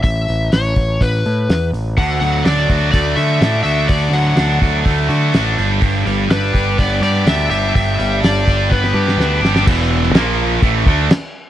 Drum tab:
CC |----------------|----------------|----------------|----------------|
HH |o-o-o-o-o-o-o-o-|o-o-o-o-o-o-o-o-|o-o-o-o-o-o-o-o-|o-o-o-o-o-o-o-o-|
SD |----o-------o---|----o-------o---|----o-------o---|----o-------o---|
BD |o-----o-o-------|o-----o-o-------|o-----o-o-------|o-----o-o-------|

CC |----------------|x---x---x---x---|
HH |o-o-o-o---------|----------------|
SD |----o---oo-oo-oo|---oo-------o---|
BD |o-----o-o-------|o-------o-o-----|